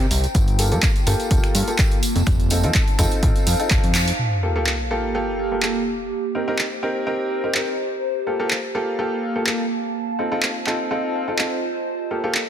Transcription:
Already playing: ambient pad D#4 C5 G5
0.11 analog synth bass C2, open hi-hat, tambourine
0.23 closed hi-hat, tambourine
0.35 analog synth bass G1, ambient pad F4, kick, closed hi-hat, tambourine
0.48 closed hi-hat, tambourine
0.59 upright piano A#3 F4 G4 A4, open hi-hat, tambourine
0.72 analog synth bass G2, upright piano A#3 F4 G4 A4, closed hi-hat, tambourine
0.83 ambient pad A#3, kick, clap, closed hi-hat, tambourine
0.96 closed hi-hat, tambourine
1.07 analog synth bass G1, upright piano A#3 F4 G4 A4, open hi-hat, tambourine
1.20 ambient pad A5, closed hi-hat, tambourine
1.31 analog synth bass F1, upright piano A#3 F4 G4 A4, kick, closed hi-hat, tambourine
1.44 finger snap, closed hi-hat, tambourine
1.55 analog synth bass G2, open hi-hat, tambourine
1.67 upright piano A#3 F4 G4 A4, closed hi-hat, tambourine
1.79 upright piano A#3 F4 G4, kick, clap, closed hi-hat, tambourine
1.91 closed hi-hat, tambourine
2.03 open hi-hat, tambourine
2.16 analog synth bass F1, closed hi-hat, tambourine
2.26 analog synth bass F1, ambient pad D#4, finger snap, kick, closed hi-hat, tambourine
2.40 ambient pad F5, closed hi-hat, tambourine
2.48 upright piano C4 D#4 F4 A4, ambient pad C5, open hi-hat, tambourine
2.63 analog synth bass F2, upright piano C4 D#4 F4 A4, closed hi-hat, tambourine
2.74 kick, clap, closed hi-hat, tambourine
2.87 closed hi-hat, tambourine
2.99 analog synth bass F1, upright piano C4 D#4 F4 A4, finger snap, kick, open hi-hat, tambourine
3.11 closed hi-hat, tambourine
3.23 analog synth bass A1, upright piano C4 D#4 F4 A4, kick, closed hi-hat, tambourine
3.36 closed hi-hat, tambourine
3.47 analog synth bass F2, open hi-hat, tambourine
3.60 upright piano C4 D#4 F4 A4, closed hi-hat, tambourine
3.70 analog synth bass F1, upright piano C4 F4, kick, clap, closed hi-hat, tambourine
3.84 analog synth bass F2, closed hi-hat, tambourine
3.95 clap, open hi-hat, tambourine
4.08 open hi-hat, tambourine
4.19 ambient pad G4, sub drop
4.30 ambient pad A#3
4.43 upright piano A#3 F4 G4 A4
4.56 upright piano A#3 F4 G4 A4
4.67 clap
4.91 upright piano A#3 F4 G4 A4
5.15 upright piano A#3 F4 G4 A4
5.52 upright piano A#3 F4 G4 A4
5.63 upright piano A#3 F4 G4 A4, clap
6.00 ambient pad C5
6.35 upright piano C4 D#4 G4 A#4
6.48 upright piano C4 D#4 G4 A#4
6.59 clap
6.83 upright piano C4 D#4 G4 A#4
7.07 upright piano C4 D#4 G4 A#4
7.44 upright piano C4 D#4 G4 A#4
7.55 upright piano C4 D#4 G4 A#4, clap
8.27 upright piano A#3 F4 G4 A4
8.40 upright piano A#3 F4 G4 A4, ambient pad A#3
8.51 clap
8.75 upright piano A#3 F4 G4 A4
8.90 ambient pad F5 A5
8.99 upright piano A#3 F4 G4 A4
9.36 upright piano A#3 F4 G4 A4
9.47 upright piano A#3 F4 G4 A4, clap
9.95 ambient pad F4
10.03 ambient pad C5
10.19 upright piano C4 D#4 F4 A4
10.32 upright piano C4 D#4 F4 A4, ambient pad D#5
10.43 clap
10.67 upright piano C4 D#4 F4 A4, clap
10.91 upright piano C4 D#4 F4 A4
11.28 upright piano C4 D#4 F4 A4
11.39 upright piano C4 D#4 F4 A4, clap
11.87 ambient pad G4
12.08 ambient pad A#3, upright piano A#3 F4 G4 A4
12.24 upright piano A#3 F4 G4 A4
12.35 clap

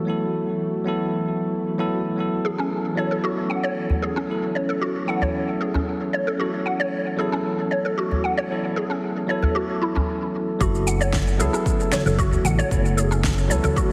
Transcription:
Already playing: ambient pad E3 A3 F#4, tine electric piano F#3 B3 E4 A4
0.05 tine electric piano F#3 B3 E4
0.10 tine electric piano A4
0.85 tine electric piano F#3 B3 E4 A4
1.78 tine electric piano F#3 B3 E4 A4
2.16 tine electric piano F#3 B3 E4, ambient pad C#4
2.20 tine electric piano A4
2.45 synth pluck G#4
2.58 synth pluck C#4
2.95 tine electric piano F#3 B3 E4 A4, synth pluck C#5
3.11 synth pluck A4
3.24 synth pluck F#4
3.50 synth pluck F#5
3.63 synth pluck C#5
3.90 udu
4.02 synth pluck G#4
4.16 synth pluck C#4
4.27 tine electric piano F#3 B3 E4
4.31 tine electric piano A4
4.55 synth pluck C#5
4.69 synth pluck A4
4.81 synth pluck F#4
5.06 tine electric piano F#3 B3 E4 A4, synth pluck F#5
5.22 synth pluck C#5, udu
5.61 synth pluck G#4
5.74 synth pluck C#4, udu
6.13 synth pluck C#5
6.27 synth pluck A4
6.37 tine electric piano F#3 B3 E4 A4, synth pluck F#4
6.66 synth pluck F#5
6.80 synth pluck C#5
7.17 tine electric piano F#3 B3 E4, synth pluck G#4
7.21 tine electric piano A4
7.32 synth pluck C#4
7.71 synth pluck C#5
7.85 synth pluck A4
7.98 synth pluck F#4
8.11 udu
8.24 synth pluck F#5
8.37 synth pluck C#5
8.48 tine electric piano F#3 B3 E4 A4
8.76 synth pluck G#4
8.90 synth pluck C#4
9.27 tine electric piano F#3 B3 E4 A4, synth pluck C#5
9.42 synth pluck A4, udu
9.55 synth pluck F#4
9.82 synth pluck E4
9.95 synth pluck C#4, udu
10.59 analog synth bass F#1, ambient pad E3 A3 F#4, tine electric piano F#3 B3 E4 A4, synth pluck F#4, kick, shaker
10.75 shaker
10.87 synth pluck F#5, shaker
11.01 synth pluck C#5, shaker
11.13 kick, snare, shaker
11.28 shaker
11.38 analog synth bass C#2, tine electric piano F#3 B3 E4 A4, synth pluck G#4, shaker
11.53 synth pluck C#4, shaker
11.66 kick, shaker
11.80 shaker
11.92 synth pluck C#5, snare, low conga, shaker
12.06 analog synth bass F#1, synth pluck A4, shaker
12.18 synth pluck F#4, kick, shaker
12.31 udu, shaker
12.45 analog synth bass A1, synth pluck F#5, low conga, shaker
12.59 synth pluck C#5, shaker
12.69 analog synth bass F#1, tine electric piano F#3 B3 E4 A4, kick, shaker
12.86 shaker
12.97 synth pluck G#4, shaker
13.11 synth pluck C#4, shaker
13.24 kick, snare, shaker
13.38 shaker
13.48 analog synth bass C#2, tine electric piano F#3 B3 E4, synth pluck C#5, shaker
13.52 tine electric piano A4
13.63 synth pluck A4, low conga, udu, shaker
13.76 synth pluck F#4, kick, shaker

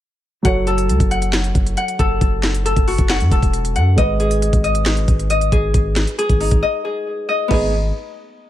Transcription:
0.43 808-style bass F#1, grand piano F#3 F#4 A4 C#5, harp F#5, kick, closed hi-hat
0.67 harp A4, closed hi-hat
0.78 closed hi-hat
0.89 808-style bass C#2, closed hi-hat
1.00 808-style bass F#1, kick, closed hi-hat
1.11 harp F#5, closed hi-hat
1.22 closed hi-hat
1.33 snare, clap, closed hi-hat
1.44 closed hi-hat
1.55 808-style bass F#1, kick, closed hi-hat
1.67 closed hi-hat
1.77 harp F#5, closed hi-hat
1.88 closed hi-hat
1.99 808-style bass F#1, harp A4, kick, closed hi-hat
2.21 808-style bass F#1, kick, closed hi-hat
2.43 snare, clap, closed hi-hat
2.54 closed hi-hat
2.65 harp A4, closed hi-hat
2.76 808-style bass F#1, kick, closed hi-hat
2.88 harp F#4, open hi-hat
2.98 808-style bass F#1, kick, closed hi-hat
3.09 harp F#5, snare, clap, closed hi-hat
3.20 808-style bass F#2, closed hi-hat
3.31 808-style bass E1, harp A4, kick, closed hi-hat
3.43 kick, closed hi-hat
3.53 closed hi-hat
3.65 closed hi-hat
3.76 808-style bass F#2, harp F#5, closed hi-hat
3.96 808-style bass G#1, grand piano G#3 G#4 B4 D#5, harp D#5, kick, closed hi-hat
4.20 harp G#4, closed hi-hat
4.31 closed hi-hat
4.42 closed hi-hat
4.53 808-style bass G#1, kick, closed hi-hat
4.64 harp D#5, closed hi-hat
4.75 closed hi-hat
4.86 snare, clap, closed hi-hat
4.97 closed hi-hat
5.08 808-style bass G#1, kick, closed hi-hat
5.19 closed hi-hat
5.30 harp D#5, closed hi-hat
5.41 closed hi-hat
5.52 808-style bass G#1, harp G#4, kick, closed hi-hat
5.74 808-style bass G#1, kick, closed hi-hat
5.96 snare, clap, closed hi-hat
6.07 closed hi-hat
6.18 harp G#4, closed hi-hat
6.29 808-style bass G#1, kick, closed hi-hat
6.40 harp D#4, open hi-hat
6.51 808-style bass G#1, kick, closed hi-hat
6.63 harp D#5
6.85 harp G#4
7.29 harp D#5
7.48 808-style bass G#1, grand piano G#3 G#4 B4 D#5, harp B3 D#4, kick, crash
7.53 harp G#4

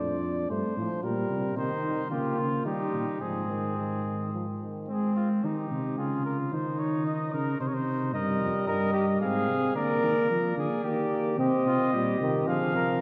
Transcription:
Already playing: tuba F2, euphonium D4, trumpet D5
0.50 tuba G2, euphonium A3, trumpet C5
0.76 tuba A2, euphonium F3
1.03 tuba A#2, euphonium G3, trumpet A#4
1.30 tuba C3
1.56 tuba C3, euphonium D#3, flugelhorn D#4, trumpet C5
1.83 tuba D#3
2.10 tuba C#3, euphonium A#3, flugelhorn F4, trumpet G4
2.37 tuba C#3, trumpet F4
2.65 tuba D#3, euphonium G3, flugelhorn D#4, trumpet G4
2.93 tuba A#2
3.21 tuba G#2, euphonium F3, flugelhorn C4, trumpet G#4
3.50 euphonium D#3
3.77 euphonium D#3
4.34 euphonium F3
4.61 euphonium D#3
4.88 tuba G#3, flugelhorn C4, trumpet G#4
5.17 trumpet F4
5.44 tuba D#3, flugelhorn D#4, trumpet G4
5.71 tuba C3
5.98 tuba C#3, flugelhorn F4, trumpet G#4
6.26 trumpet A#4
6.52 tuba D#3, flugelhorn D#4, trumpet C5
6.79 trumpet C#5
7.07 trumpet D#5
7.33 tuba C#3, trumpet A#4
7.60 tuba C3, flugelhorn D#4, trumpet C5
7.68 trumpet C#5
7.74 trumpet C5
8.14 tuba G2, euphonium G3, trumpet A#4, flugelhorn D#5
8.40 tuba F2
8.67 tuba G2, flugelhorn A#4, trumpet D#5
8.93 flugelhorn G4
9.21 tuba G#2, euphonium C4, flugelhorn G#4, trumpet F5
9.48 tuba C3
9.75 tuba D3, euphonium A#3, flugelhorn A#4, trumpet D5
10.03 tuba D#3
10.30 tuba F3, euphonium A#3, trumpet D5
10.57 tuba D3, flugelhorn G#4
10.84 tuba D#3, euphonium A#3, flugelhorn G4
11.38 tuba C3, euphonium C4, flugelhorn G4, trumpet D#5
11.65 tuba C3, flugelhorn F4
11.93 tuba A#2, euphonium G3, flugelhorn G4
12.20 tuba C3, euphonium D#3
12.47 tuba D3, euphonium F3, flugelhorn G#4, trumpet F5
12.74 tuba C3, flugelhorn A#4

